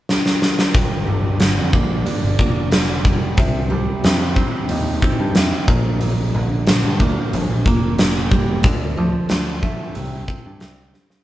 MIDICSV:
0, 0, Header, 1, 4, 480
1, 0, Start_track
1, 0, Key_signature, -2, "minor"
1, 0, Tempo, 658617
1, 541, Time_signature, 4, 2, 24, 8
1, 8190, End_track
2, 0, Start_track
2, 0, Title_t, "Steel-string acoustic guitar"
2, 0, Program_c, 0, 25
2, 537, Note_on_c, 0, 43, 62
2, 778, Note_on_c, 0, 50, 62
2, 1010, Note_off_c, 0, 50, 0
2, 1019, Note_on_c, 0, 50, 66
2, 1264, Note_on_c, 0, 58, 60
2, 1500, Note_on_c, 0, 62, 64
2, 1731, Note_off_c, 0, 58, 0
2, 1740, Note_off_c, 0, 43, 0
2, 1740, Note_on_c, 0, 58, 61
2, 1967, Note_off_c, 0, 50, 0
2, 1976, Note_on_c, 0, 50, 68
2, 2225, Note_on_c, 0, 55, 65
2, 2456, Note_off_c, 0, 50, 0
2, 2459, Note_on_c, 0, 48, 64
2, 2462, Note_off_c, 0, 58, 0
2, 2462, Note_off_c, 0, 62, 0
2, 2464, Note_off_c, 0, 55, 0
2, 2696, Note_on_c, 0, 55, 65
2, 2936, Note_off_c, 0, 48, 0
2, 2945, Note_on_c, 0, 48, 62
2, 3175, Note_on_c, 0, 60, 61
2, 3418, Note_on_c, 0, 63, 69
2, 3651, Note_off_c, 0, 60, 0
2, 3659, Note_on_c, 0, 60, 66
2, 3890, Note_off_c, 0, 48, 0
2, 3898, Note_on_c, 0, 48, 67
2, 3902, Note_off_c, 0, 55, 0
2, 4140, Note_on_c, 0, 46, 66
2, 4142, Note_off_c, 0, 48, 0
2, 4142, Note_off_c, 0, 63, 0
2, 4143, Note_off_c, 0, 60, 0
2, 4375, Note_off_c, 0, 46, 0
2, 4384, Note_on_c, 0, 46, 67
2, 4624, Note_on_c, 0, 50, 65
2, 4850, Note_off_c, 0, 50, 0
2, 4858, Note_on_c, 0, 50, 68
2, 5096, Note_on_c, 0, 58, 61
2, 5339, Note_off_c, 0, 46, 0
2, 5342, Note_off_c, 0, 58, 0
2, 5343, Note_off_c, 0, 50, 0
2, 5347, Note_on_c, 0, 46, 58
2, 5584, Note_on_c, 0, 58, 64
2, 5818, Note_on_c, 0, 50, 66
2, 6055, Note_on_c, 0, 55, 65
2, 6290, Note_off_c, 0, 50, 0
2, 6298, Note_on_c, 0, 50, 61
2, 6300, Note_off_c, 0, 55, 0
2, 6305, Note_off_c, 0, 58, 0
2, 6306, Note_off_c, 0, 46, 0
2, 6539, Note_on_c, 0, 53, 66
2, 6762, Note_off_c, 0, 50, 0
2, 6771, Note_on_c, 0, 50, 67
2, 7017, Note_on_c, 0, 57, 64
2, 7250, Note_off_c, 0, 50, 0
2, 7253, Note_on_c, 0, 48, 60
2, 7260, Note_off_c, 0, 57, 0
2, 7261, Note_off_c, 0, 53, 0
2, 7491, Note_on_c, 0, 60, 61
2, 7724, Note_off_c, 0, 48, 0
2, 7733, Note_on_c, 0, 48, 68
2, 7971, Note_on_c, 0, 55, 64
2, 8190, Note_off_c, 0, 48, 0
2, 8190, Note_off_c, 0, 55, 0
2, 8190, Note_off_c, 0, 60, 0
2, 8190, End_track
3, 0, Start_track
3, 0, Title_t, "Picked electric bass"
3, 0, Program_c, 1, 34
3, 546, Note_on_c, 1, 31, 88
3, 768, Note_off_c, 1, 31, 0
3, 789, Note_on_c, 1, 31, 77
3, 1010, Note_off_c, 1, 31, 0
3, 1027, Note_on_c, 1, 31, 82
3, 1137, Note_off_c, 1, 31, 0
3, 1153, Note_on_c, 1, 41, 78
3, 1260, Note_off_c, 1, 41, 0
3, 1264, Note_on_c, 1, 34, 90
3, 1487, Note_off_c, 1, 34, 0
3, 1624, Note_on_c, 1, 31, 84
3, 1735, Note_off_c, 1, 31, 0
3, 1744, Note_on_c, 1, 29, 77
3, 2435, Note_off_c, 1, 29, 0
3, 2464, Note_on_c, 1, 36, 93
3, 2689, Note_off_c, 1, 36, 0
3, 2706, Note_on_c, 1, 36, 83
3, 2817, Note_off_c, 1, 36, 0
3, 2951, Note_on_c, 1, 41, 94
3, 3173, Note_off_c, 1, 41, 0
3, 3421, Note_on_c, 1, 39, 83
3, 3648, Note_off_c, 1, 39, 0
3, 3787, Note_on_c, 1, 43, 74
3, 3899, Note_off_c, 1, 43, 0
3, 3903, Note_on_c, 1, 41, 92
3, 4016, Note_off_c, 1, 41, 0
3, 4138, Note_on_c, 1, 34, 91
3, 4593, Note_off_c, 1, 34, 0
3, 4628, Note_on_c, 1, 34, 82
3, 4852, Note_off_c, 1, 34, 0
3, 4870, Note_on_c, 1, 34, 83
3, 4980, Note_off_c, 1, 34, 0
3, 4985, Note_on_c, 1, 43, 83
3, 5098, Note_off_c, 1, 43, 0
3, 5102, Note_on_c, 1, 38, 88
3, 5217, Note_off_c, 1, 38, 0
3, 5349, Note_on_c, 1, 34, 96
3, 5460, Note_off_c, 1, 34, 0
3, 5464, Note_on_c, 1, 34, 88
3, 5577, Note_off_c, 1, 34, 0
3, 5582, Note_on_c, 1, 29, 76
3, 6275, Note_off_c, 1, 29, 0
3, 6299, Note_on_c, 1, 38, 92
3, 6527, Note_off_c, 1, 38, 0
3, 6544, Note_on_c, 1, 38, 80
3, 6657, Note_off_c, 1, 38, 0
3, 6786, Note_on_c, 1, 38, 89
3, 7010, Note_off_c, 1, 38, 0
3, 7265, Note_on_c, 1, 36, 85
3, 7488, Note_off_c, 1, 36, 0
3, 7623, Note_on_c, 1, 43, 74
3, 7735, Note_off_c, 1, 43, 0
3, 7744, Note_on_c, 1, 36, 89
3, 7967, Note_off_c, 1, 36, 0
3, 8190, End_track
4, 0, Start_track
4, 0, Title_t, "Drums"
4, 67, Note_on_c, 9, 38, 68
4, 140, Note_off_c, 9, 38, 0
4, 189, Note_on_c, 9, 38, 69
4, 261, Note_off_c, 9, 38, 0
4, 307, Note_on_c, 9, 38, 84
4, 380, Note_off_c, 9, 38, 0
4, 429, Note_on_c, 9, 38, 88
4, 502, Note_off_c, 9, 38, 0
4, 541, Note_on_c, 9, 46, 49
4, 544, Note_on_c, 9, 36, 104
4, 614, Note_off_c, 9, 46, 0
4, 616, Note_off_c, 9, 36, 0
4, 1019, Note_on_c, 9, 46, 49
4, 1024, Note_on_c, 9, 38, 95
4, 1092, Note_off_c, 9, 46, 0
4, 1097, Note_off_c, 9, 38, 0
4, 1263, Note_on_c, 9, 36, 78
4, 1336, Note_off_c, 9, 36, 0
4, 1505, Note_on_c, 9, 46, 49
4, 1578, Note_off_c, 9, 46, 0
4, 1742, Note_on_c, 9, 36, 74
4, 1815, Note_off_c, 9, 36, 0
4, 1980, Note_on_c, 9, 46, 50
4, 1985, Note_on_c, 9, 38, 106
4, 2053, Note_off_c, 9, 46, 0
4, 2058, Note_off_c, 9, 38, 0
4, 2222, Note_on_c, 9, 36, 84
4, 2295, Note_off_c, 9, 36, 0
4, 2458, Note_on_c, 9, 46, 47
4, 2462, Note_on_c, 9, 36, 101
4, 2531, Note_off_c, 9, 46, 0
4, 2534, Note_off_c, 9, 36, 0
4, 2943, Note_on_c, 9, 46, 45
4, 2948, Note_on_c, 9, 38, 97
4, 3016, Note_off_c, 9, 46, 0
4, 3021, Note_off_c, 9, 38, 0
4, 3180, Note_on_c, 9, 36, 73
4, 3253, Note_off_c, 9, 36, 0
4, 3417, Note_on_c, 9, 46, 47
4, 3490, Note_off_c, 9, 46, 0
4, 3661, Note_on_c, 9, 36, 75
4, 3734, Note_off_c, 9, 36, 0
4, 3898, Note_on_c, 9, 46, 47
4, 3903, Note_on_c, 9, 38, 107
4, 3971, Note_off_c, 9, 46, 0
4, 3976, Note_off_c, 9, 38, 0
4, 4140, Note_on_c, 9, 36, 101
4, 4213, Note_off_c, 9, 36, 0
4, 4378, Note_on_c, 9, 46, 46
4, 4451, Note_off_c, 9, 46, 0
4, 4858, Note_on_c, 9, 46, 46
4, 4863, Note_on_c, 9, 38, 107
4, 4931, Note_off_c, 9, 46, 0
4, 4936, Note_off_c, 9, 38, 0
4, 5102, Note_on_c, 9, 36, 76
4, 5174, Note_off_c, 9, 36, 0
4, 5345, Note_on_c, 9, 46, 50
4, 5418, Note_off_c, 9, 46, 0
4, 5581, Note_on_c, 9, 36, 79
4, 5654, Note_off_c, 9, 36, 0
4, 5819, Note_on_c, 9, 46, 52
4, 5824, Note_on_c, 9, 38, 106
4, 5892, Note_off_c, 9, 46, 0
4, 5897, Note_off_c, 9, 38, 0
4, 6060, Note_on_c, 9, 36, 84
4, 6133, Note_off_c, 9, 36, 0
4, 6290, Note_on_c, 9, 46, 52
4, 6297, Note_on_c, 9, 36, 109
4, 6363, Note_off_c, 9, 46, 0
4, 6370, Note_off_c, 9, 36, 0
4, 6770, Note_on_c, 9, 46, 48
4, 6776, Note_on_c, 9, 38, 103
4, 6843, Note_off_c, 9, 46, 0
4, 6848, Note_off_c, 9, 38, 0
4, 7017, Note_on_c, 9, 36, 78
4, 7090, Note_off_c, 9, 36, 0
4, 7252, Note_on_c, 9, 46, 46
4, 7325, Note_off_c, 9, 46, 0
4, 7493, Note_on_c, 9, 36, 78
4, 7566, Note_off_c, 9, 36, 0
4, 7728, Note_on_c, 9, 46, 44
4, 7733, Note_on_c, 9, 38, 106
4, 7800, Note_off_c, 9, 46, 0
4, 7806, Note_off_c, 9, 38, 0
4, 7972, Note_on_c, 9, 38, 56
4, 8045, Note_off_c, 9, 38, 0
4, 8092, Note_on_c, 9, 38, 74
4, 8165, Note_off_c, 9, 38, 0
4, 8190, End_track
0, 0, End_of_file